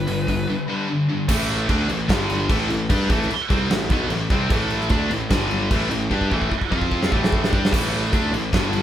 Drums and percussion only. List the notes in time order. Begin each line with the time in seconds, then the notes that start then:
0.08 open hi-hat
0.28 kick, open hi-hat
1.29 kick, crash
1.49 crash
1.69 kick, crash
1.89 crash
2.09 kick, snare, crash
2.30 crash
2.50 kick, crash
2.70 crash
2.90 kick, crash
3.10 kick, crash
3.22 snare
3.31 crash
3.50 kick, crash
3.70 snare, crash
3.90 kick, crash
4.10 crash
4.30 kick, crash
4.50 kick, crash
4.70 crash
4.81 snare
4.89 kick, crash
5.11 crash
5.30 kick, snare, crash
5.51 crash
5.71 kick, crash
5.91 crash
6.11 kick
6.21 kick
6.32 kick
6.42 kick
6.51 kick
6.62 kick
6.72 kick
6.81 kick
6.92 kick
7.03 snare
7.12 kick
7.24 snare
7.32 kick
7.44 snare
7.53 kick
7.65 snare
7.73 kick, crash
7.94 crash
8.05 snare
8.13 kick, crash
8.34 crash
8.53 kick, snare, crash
8.73 crash